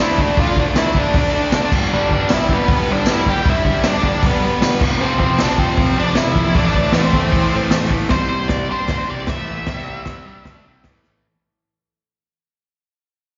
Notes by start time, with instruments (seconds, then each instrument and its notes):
0.00 distorted electric guitar D3 A3 D4, lead electric guitar E4
0.18 distorted electric guitar D3 A3 D4, lead electric guitar D4, kick
0.37 distorted electric guitar D3 A3 D4, lead electric guitar F4, kick, open hi-hat
0.56 distorted electric guitar D3 A3 D4, lead electric guitar D4, kick
0.74 distorted electric guitar D3 A3 D4, lead electric guitar E4, snare, open hi-hat, tambourine
0.93 distorted electric guitar D3 A3 D4, kick
0.98 lead electric guitar D4
1.14 distorted electric guitar D3 A3 D4, lead electric guitar D4, kick, open hi-hat
1.33 distorted electric guitar D3 A3 D4
1.52 distorted electric guitar D3 A3 D4, snare, open hi-hat, tambourine
1.71 distorted electric guitar G2 D3 G3, kick, crash
1.92 distorted electric guitar G2 D3 G3, lead electric guitar D4
2.10 distorted electric guitar G2 D3 G3, lead electric guitar D4, kick
2.29 distorted electric guitar G2 D3 G3, snare, open hi-hat, tambourine
2.34 lead electric guitar E4
2.49 distorted electric guitar G2 D3 G3, lead electric guitar B3, kick
2.68 distorted electric guitar G2 D3 G3, kick, open hi-hat
2.88 distorted electric guitar G2 D3 G3, lead electric guitar D4
3.06 distorted electric guitar G2 D3 G3, snare, open hi-hat, tambourine
3.12 lead electric guitar E4
3.25 distorted electric guitar G2 D3 G3, kick
3.29 lead electric guitar G4
3.45 distorted electric guitar G2 D3 G3, kick, open hi-hat
3.50 lead electric guitar E4
3.65 distorted electric guitar G2 D3 G3, kick
3.84 distorted electric guitar G2 D3 G3, lead electric guitar D4, snare, open hi-hat, tambourine
4.02 distorted electric guitar G2 D3 G3, kick
4.22 distorted electric guitar G2 D3 G3, kick, open hi-hat
4.27 lead electric guitar B3
4.41 distorted electric guitar G2 D3 G3, lead electric guitar B3
4.61 distorted electric guitar G2 D3 G3, snare, open hi-hat, tambourine
4.80 distorted electric guitar F2 C3 F3, kick, crash
5.00 distorted electric guitar F2 C3 F3, lead electric guitar C4
5.19 distorted electric guitar F2 C3 F3, lead electric guitar C4, kick
5.38 distorted electric guitar F2 C3 F3, snare, open hi-hat, tambourine
5.42 lead electric guitar D4
5.57 distorted electric guitar F2 C3 F3, lead electric guitar C4, kick
5.76 distorted electric guitar F2 C3 F3, kick, open hi-hat
5.97 distorted electric guitar F2 C3 F3, lead electric guitar D4
6.15 distorted electric guitar F2 C3 F3, lead electric guitar E4, snare, open hi-hat, tambourine
6.35 distorted electric guitar F2 C3 F3, kick
6.54 distorted electric guitar A2 E3 A3, lead electric guitar D4, kick, open hi-hat
6.73 distorted electric guitar A2 E3 A3, kick
6.92 distorted electric guitar A2 E3 A3, lead electric guitar C4, snare, open hi-hat, tambourine
7.13 distorted electric guitar A2 E3 A3, kick
7.32 distorted electric guitar A2 E3 A3, kick, open hi-hat
7.52 distorted electric guitar A2 E3 A3
7.71 distorted electric guitar A2 E3 A3, snare, open hi-hat, tambourine
7.89 distorted electric guitar A2 E3 A3, kick
8.09 distorted electric guitar C3 G3 C4, lead electric guitar C5, kick, snare, open hi-hat
8.29 lead electric guitar C5
8.48 lead electric guitar D5, kick, snare, open hi-hat
8.69 distorted electric guitar G3 D4 G4, lead electric guitar C5
8.88 distorted electric guitar D3 A3 D4, kick, snare, open hi-hat
9.08 distorted electric guitar C3 G3 C4, lead electric guitar D5
9.27 distorted electric guitar A2 E3 A3, lead electric guitar E5, kick, snare, open hi-hat
9.66 distorted electric guitar C3 G3 C4, kick, snare, open hi-hat
10.05 kick, snare, open hi-hat
10.25 distorted electric guitar G3 D4 G4
10.43 distorted electric guitar D3 A3 D4, kick, snare, open hi-hat
10.64 distorted electric guitar C3 G3 C4
10.84 distorted electric guitar A2 E3 A3, kick, snare, open hi-hat
11.04 snare